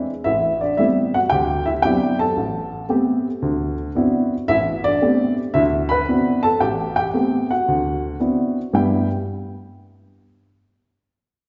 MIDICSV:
0, 0, Header, 1, 2, 480
1, 0, Start_track
1, 0, Key_signature, 1, "major"
1, 0, Tempo, 530504
1, 224, Time_signature, 4, 2, 24, 8
1, 10389, End_track
2, 0, Start_track
2, 0, Title_t, "Upright piano"
2, 0, Program_c, 0, 0
2, 0, Note_on_c, 0, 62, 45
2, 91, Note_off_c, 0, 62, 0
2, 220, Note_on_c, 0, 76, 78
2, 234, Note_on_c, 0, 33, 63
2, 238, Note_on_c, 0, 64, 59
2, 530, Note_off_c, 0, 64, 0
2, 550, Note_on_c, 0, 74, 65
2, 553, Note_off_c, 0, 76, 0
2, 570, Note_on_c, 0, 62, 51
2, 646, Note_off_c, 0, 33, 0
2, 700, Note_on_c, 0, 76, 76
2, 705, Note_off_c, 0, 62, 0
2, 710, Note_off_c, 0, 74, 0
2, 712, Note_on_c, 0, 55, 54
2, 718, Note_on_c, 0, 57, 46
2, 718, Note_on_c, 0, 59, 42
2, 723, Note_on_c, 0, 60, 50
2, 725, Note_on_c, 0, 64, 56
2, 773, Note_off_c, 0, 76, 0
2, 795, Note_off_c, 0, 64, 0
2, 1034, Note_on_c, 0, 78, 76
2, 1045, Note_off_c, 0, 55, 0
2, 1048, Note_off_c, 0, 57, 0
2, 1048, Note_off_c, 0, 59, 0
2, 1050, Note_off_c, 0, 60, 0
2, 1050, Note_on_c, 0, 66, 56
2, 1080, Note_off_c, 0, 78, 0
2, 1096, Note_off_c, 0, 66, 0
2, 1172, Note_on_c, 0, 79, 89
2, 1193, Note_on_c, 0, 38, 65
2, 1199, Note_on_c, 0, 67, 67
2, 1474, Note_off_c, 0, 79, 0
2, 1488, Note_off_c, 0, 67, 0
2, 1498, Note_on_c, 0, 76, 77
2, 1513, Note_on_c, 0, 64, 54
2, 1543, Note_off_c, 0, 76, 0
2, 1558, Note_off_c, 0, 64, 0
2, 1604, Note_off_c, 0, 38, 0
2, 1650, Note_on_c, 0, 79, 90
2, 1673, Note_on_c, 0, 59, 48
2, 1673, Note_on_c, 0, 60, 44
2, 1675, Note_on_c, 0, 54, 46
2, 1675, Note_on_c, 0, 67, 69
2, 1678, Note_on_c, 0, 64, 58
2, 1682, Note_on_c, 0, 62, 45
2, 1954, Note_off_c, 0, 79, 0
2, 1967, Note_off_c, 0, 67, 0
2, 1984, Note_on_c, 0, 81, 81
2, 1996, Note_on_c, 0, 69, 69
2, 2004, Note_off_c, 0, 59, 0
2, 2004, Note_off_c, 0, 60, 0
2, 2005, Note_off_c, 0, 54, 0
2, 2007, Note_off_c, 0, 64, 0
2, 2009, Note_off_c, 0, 62, 0
2, 2145, Note_on_c, 0, 33, 64
2, 2559, Note_off_c, 0, 33, 0
2, 2613, Note_on_c, 0, 57, 52
2, 2618, Note_on_c, 0, 59, 48
2, 2621, Note_on_c, 0, 60, 51
2, 2623, Note_on_c, 0, 67, 56
2, 2953, Note_off_c, 0, 57, 0
2, 2956, Note_off_c, 0, 59, 0
2, 2958, Note_off_c, 0, 60, 0
2, 2959, Note_off_c, 0, 67, 0
2, 3096, Note_on_c, 0, 38, 66
2, 3385, Note_off_c, 0, 81, 0
2, 3391, Note_off_c, 0, 69, 0
2, 3514, Note_off_c, 0, 38, 0
2, 3576, Note_on_c, 0, 59, 54
2, 3582, Note_on_c, 0, 62, 46
2, 3586, Note_on_c, 0, 60, 47
2, 3587, Note_on_c, 0, 64, 49
2, 3587, Note_on_c, 0, 66, 55
2, 3915, Note_off_c, 0, 59, 0
2, 3917, Note_off_c, 0, 62, 0
2, 3919, Note_off_c, 0, 60, 0
2, 3920, Note_off_c, 0, 64, 0
2, 3920, Note_off_c, 0, 66, 0
2, 4056, Note_on_c, 0, 76, 104
2, 4062, Note_on_c, 0, 33, 66
2, 4074, Note_on_c, 0, 64, 74
2, 4128, Note_off_c, 0, 76, 0
2, 4145, Note_off_c, 0, 64, 0
2, 4380, Note_on_c, 0, 74, 98
2, 4411, Note_on_c, 0, 62, 65
2, 4477, Note_off_c, 0, 33, 0
2, 4539, Note_on_c, 0, 57, 54
2, 4542, Note_on_c, 0, 59, 49
2, 4545, Note_on_c, 0, 67, 57
2, 4546, Note_on_c, 0, 60, 48
2, 4826, Note_off_c, 0, 74, 0
2, 4842, Note_off_c, 0, 62, 0
2, 4876, Note_off_c, 0, 57, 0
2, 4877, Note_off_c, 0, 59, 0
2, 4879, Note_off_c, 0, 60, 0
2, 4879, Note_off_c, 0, 67, 0
2, 5010, Note_on_c, 0, 76, 85
2, 5017, Note_on_c, 0, 38, 70
2, 5035, Note_on_c, 0, 64, 67
2, 5083, Note_off_c, 0, 76, 0
2, 5105, Note_off_c, 0, 64, 0
2, 5328, Note_on_c, 0, 83, 89
2, 5351, Note_on_c, 0, 71, 72
2, 5434, Note_off_c, 0, 38, 0
2, 5508, Note_on_c, 0, 59, 47
2, 5509, Note_on_c, 0, 60, 45
2, 5510, Note_on_c, 0, 66, 57
2, 5511, Note_on_c, 0, 62, 43
2, 5515, Note_on_c, 0, 64, 42
2, 5780, Note_off_c, 0, 83, 0
2, 5792, Note_off_c, 0, 71, 0
2, 5815, Note_on_c, 0, 81, 87
2, 5831, Note_on_c, 0, 69, 68
2, 5840, Note_off_c, 0, 59, 0
2, 5841, Note_off_c, 0, 60, 0
2, 5842, Note_off_c, 0, 62, 0
2, 5842, Note_off_c, 0, 66, 0
2, 5844, Note_off_c, 0, 64, 0
2, 5972, Note_off_c, 0, 69, 0
2, 5976, Note_on_c, 0, 79, 80
2, 5979, Note_off_c, 0, 81, 0
2, 5981, Note_on_c, 0, 33, 65
2, 5993, Note_on_c, 0, 67, 65
2, 6284, Note_off_c, 0, 79, 0
2, 6285, Note_off_c, 0, 67, 0
2, 6298, Note_on_c, 0, 79, 86
2, 6321, Note_on_c, 0, 67, 64
2, 6396, Note_off_c, 0, 33, 0
2, 6456, Note_off_c, 0, 67, 0
2, 6456, Note_on_c, 0, 59, 46
2, 6459, Note_on_c, 0, 57, 47
2, 6461, Note_on_c, 0, 60, 47
2, 6470, Note_on_c, 0, 67, 53
2, 6745, Note_off_c, 0, 79, 0
2, 6791, Note_on_c, 0, 78, 73
2, 6795, Note_off_c, 0, 59, 0
2, 6796, Note_off_c, 0, 57, 0
2, 6797, Note_off_c, 0, 60, 0
2, 6801, Note_off_c, 0, 67, 0
2, 6810, Note_on_c, 0, 66, 52
2, 6950, Note_on_c, 0, 38, 67
2, 7362, Note_off_c, 0, 38, 0
2, 7387, Note_off_c, 0, 78, 0
2, 7397, Note_off_c, 0, 66, 0
2, 7418, Note_on_c, 0, 59, 47
2, 7422, Note_on_c, 0, 62, 45
2, 7423, Note_on_c, 0, 60, 45
2, 7425, Note_on_c, 0, 64, 43
2, 7431, Note_on_c, 0, 66, 51
2, 7756, Note_off_c, 0, 59, 0
2, 7758, Note_off_c, 0, 62, 0
2, 7759, Note_off_c, 0, 60, 0
2, 7760, Note_off_c, 0, 64, 0
2, 7763, Note_off_c, 0, 66, 0
2, 7901, Note_on_c, 0, 43, 57
2, 7903, Note_on_c, 0, 55, 56
2, 7906, Note_on_c, 0, 59, 50
2, 7909, Note_on_c, 0, 64, 64
2, 7915, Note_on_c, 0, 79, 72
2, 8190, Note_off_c, 0, 43, 0
2, 8191, Note_off_c, 0, 55, 0
2, 8192, Note_off_c, 0, 59, 0
2, 8194, Note_off_c, 0, 64, 0
2, 8207, Note_off_c, 0, 79, 0
2, 10389, End_track
0, 0, End_of_file